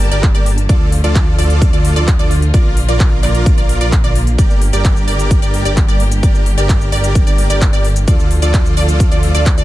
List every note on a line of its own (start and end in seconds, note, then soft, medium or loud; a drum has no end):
0.00 4.35 D3 medium
0.00 0.66 G3 medium
0.00 0.66 A#3 medium
0.00 0.67 A5 medium
0.00 open hi-hat loud
0.00 downlifter medium
0.12 0.32 G1 loud
0.12 0.25 G4 medium
0.12 0.25 A#4 medium
0.12 0.25 D5 loud
0.12 closed hi-hat medium
0.23 kick loud
0.23 clap loud
0.23 closed hi-hat medium
0.35 0.67 G1 loud
0.35 0.48 G4 loud
0.35 0.48 A#4 medium
0.35 0.48 D5 loud
0.35 closed hi-hat soft
0.46 open hi-hat loud
0.58 closed hi-hat medium
0.69 1.02 D2 loud
0.69 2.52 F3 medium
0.69 2.52 A3 medium
0.69 0.91 F4 medium
0.69 4.35 F4 medium
0.69 0.91 A4 medium
0.69 0.91 D5 medium
0.69 kick loud
0.69 closed hi-hat medium
0.92 open hi-hat loud
1.04 1.36 D2 loud
1.04 1.36 F4 medium
1.04 1.36 A4 medium
1.04 1.36 D5 medium
1.04 closed hi-hat soft
1.15 kick loud
1.15 clap loud
1.15 closed hi-hat medium
1.39 1.71 D2 loud
1.39 1.70 F4 medium
1.39 1.70 A4 medium
1.39 1.70 D5 loud
1.39 1.70 D5 medium
1.39 open hi-hat loud
1.50 closed hi-hat medium
1.62 kick loud
1.62 closed hi-hat medium
1.73 1.94 D2 loud
1.73 1.93 F4 medium
1.73 1.94 A4 medium
1.73 1.93 D5 medium
1.73 closed hi-hat soft
1.85 open hi-hat loud
1.96 2.17 D2 loud
1.96 2.10 F4 medium
1.96 2.10 A4 medium
1.96 2.10 D5 loud
1.96 closed hi-hat medium
2.08 kick loud
2.08 clap loud
2.08 closed hi-hat medium
2.19 2.52 D2 loud
2.19 2.33 F4 loud
2.19 2.33 A4 medium
2.19 2.33 D5 loud
2.19 closed hi-hat soft
2.31 open hi-hat loud
2.42 closed hi-hat medium
2.54 2.86 A#1 loud
2.54 4.37 F3 medium
2.54 8.04 A#3 medium
2.54 2.76 F4 medium
2.54 2.76 A#4 medium
2.54 2.76 D5 medium
2.54 kick loud
2.54 closed hi-hat medium
2.77 open hi-hat loud
2.88 3.21 A#1 loud
2.88 3.20 F4 medium
2.88 3.20 A#4 medium
2.88 3.20 D5 medium
2.88 closed hi-hat soft
3.00 kick loud
3.00 clap loud
3.00 closed hi-hat medium
3.23 3.55 A#1 loud
3.23 3.55 F4 medium
3.23 3.55 A#4 medium
3.23 3.55 D5 medium
3.23 clap soft
3.23 open hi-hat loud
3.35 closed hi-hat soft
3.46 kick loud
3.46 closed hi-hat medium
3.58 3.79 A#1 loud
3.58 3.78 F4 medium
3.58 3.78 A#4 medium
3.58 3.78 D5 medium
3.58 closed hi-hat soft
3.69 open hi-hat loud
3.81 4.02 A#1 loud
3.81 3.95 F4 loud
3.81 3.95 A#4 medium
3.81 3.95 D5 loud
3.81 closed hi-hat medium
3.92 kick loud
3.92 clap loud
3.92 closed hi-hat medium
4.04 4.36 A#1 loud
4.04 4.18 F4 loud
4.04 4.18 A#4 medium
4.04 4.18 D5 loud
4.04 closed hi-hat soft
4.16 open hi-hat loud
4.27 closed hi-hat medium
4.38 4.71 G1 loud
4.38 9.64 D3 medium
4.38 8.04 G3 medium
4.38 8.04 G4 medium
4.38 4.61 G4 medium
4.38 4.61 A#4 medium
4.38 4.61 D5 medium
4.38 kick loud
4.38 closed hi-hat medium
4.38 cabasa medium
4.50 cabasa soft
4.62 open hi-hat loud
4.73 5.05 G1 loud
4.73 5.05 G4 medium
4.73 5.05 A#4 medium
4.73 5.05 D5 medium
4.73 closed hi-hat soft
4.73 cabasa medium
4.85 kick loud
4.85 clap loud
4.85 closed hi-hat medium
4.85 cabasa medium
4.97 cabasa soft
5.08 5.40 G1 loud
5.08 5.40 G4 medium
5.08 5.40 A#4 medium
5.08 5.39 D5 medium
5.08 5.40 D5 medium
5.08 open hi-hat loud
5.19 closed hi-hat medium
5.19 cabasa medium
5.31 kick loud
5.31 closed hi-hat medium
5.31 cabasa medium
5.42 5.63 G1 medium
5.42 5.63 G4 medium
5.42 5.63 A#4 medium
5.42 5.63 D5 medium
5.42 closed hi-hat soft
5.42 cabasa soft
5.54 open hi-hat loud
5.65 5.86 G1 loud
5.65 5.79 G4 medium
5.65 5.79 A#4 medium
5.65 5.79 D5 loud
5.65 closed hi-hat medium
5.65 cabasa medium
5.77 kick loud
5.77 clap loud
5.77 closed hi-hat medium
5.77 cabasa medium
5.88 6.21 G1 loud
5.88 6.02 G4 loud
5.88 6.02 A#4 medium
5.88 6.02 D5 loud
5.88 closed hi-hat soft
5.88 cabasa soft
6.00 open hi-hat loud
6.12 closed hi-hat soft
6.12 cabasa medium
6.23 6.55 G1 loud
6.23 6.45 G4 medium
6.23 6.45 A#4 medium
6.23 6.45 D5 medium
6.23 kick loud
6.23 closed hi-hat medium
6.23 cabasa medium
6.35 cabasa soft
6.46 open hi-hat loud
6.58 6.90 G1 loud
6.58 6.90 G4 medium
6.58 6.90 A#4 medium
6.58 6.90 D5 medium
6.58 closed hi-hat medium
6.58 cabasa medium
6.69 kick loud
6.69 clap loud
6.69 closed hi-hat medium
6.69 cabasa medium
6.81 cabasa soft
6.92 7.25 G1 loud
6.92 7.24 G4 medium
6.92 7.24 A#4 medium
6.92 7.24 D5 loud
6.92 open hi-hat loud
7.04 closed hi-hat medium
7.04 cabasa medium
7.15 kick loud
7.15 closed hi-hat medium
7.15 cabasa medium
7.27 7.48 G1 loud
7.27 7.47 G4 medium
7.27 7.47 A#4 medium
7.27 7.47 D5 medium
7.27 closed hi-hat soft
7.27 cabasa soft
7.38 open hi-hat loud
7.50 7.71 G1 loud
7.50 7.64 G4 loud
7.50 7.64 A#4 medium
7.50 7.64 D5 loud
7.50 closed hi-hat medium
7.50 cabasa medium
7.61 kick loud
7.61 clap loud
7.61 closed hi-hat medium
7.61 cabasa medium
7.73 8.05 G1 loud
7.73 7.87 G4 loud
7.73 7.87 A#4 medium
7.73 7.87 D5 loud
7.73 closed hi-hat soft
7.73 cabasa soft
7.84 open hi-hat loud
7.96 closed hi-hat medium
7.96 cabasa medium
8.08 8.40 D2 loud
8.08 9.64 F3 medium
8.08 9.64 A3 medium
8.08 8.30 F4 medium
8.08 9.64 F4 medium
8.08 8.30 A4 medium
8.08 8.30 D5 medium
8.08 kick loud
8.08 closed hi-hat medium
8.08 cabasa medium
8.19 cabasa soft
8.31 open hi-hat loud
8.42 8.75 D2 loud
8.42 8.74 F4 medium
8.42 8.74 A4 medium
8.42 8.74 D5 medium
8.42 closed hi-hat medium
8.42 cabasa medium
8.54 kick loud
8.54 clap loud
8.54 closed hi-hat medium
8.54 cabasa medium
8.66 cabasa soft
8.77 9.09 D2 loud
8.77 9.09 F4 medium
8.77 9.09 A4 medium
8.77 9.09 D5 loud
8.77 open hi-hat loud
8.88 closed hi-hat medium
8.88 cabasa medium
9.00 kick loud
9.00 closed hi-hat medium
9.00 cabasa medium
9.12 9.32 D2 loud
9.12 9.32 F4 medium
9.12 9.32 A4 medium
9.12 9.32 D5 medium
9.12 closed hi-hat soft
9.12 cabasa soft
9.23 open hi-hat loud
9.35 9.55 D2 loud
9.35 9.48 F4 medium
9.35 9.48 A4 medium
9.35 9.48 D5 loud
9.35 closed hi-hat medium
9.35 cabasa medium
9.46 kick loud
9.46 clap loud
9.46 closed hi-hat medium
9.46 cabasa medium
9.58 9.64 D2 loud
9.58 9.64 F4 loud
9.58 9.64 A4 medium
9.58 9.64 D5 loud
9.58 closed hi-hat soft
9.58 cabasa soft